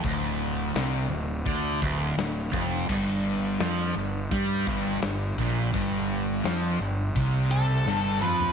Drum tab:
CC |----------------|x---------------|----------------|
HH |o---o---o---o---|----o---o---o---|o---o---o-------|
SD |----o-------o---|----oo-----oo---|----o-------o---|
T2 |----------------|----------------|--------------o-|
FT |----------------|----------------|---------------o|
BD |o-------o-o---o-|o-------o-o---o-|o-------o-------|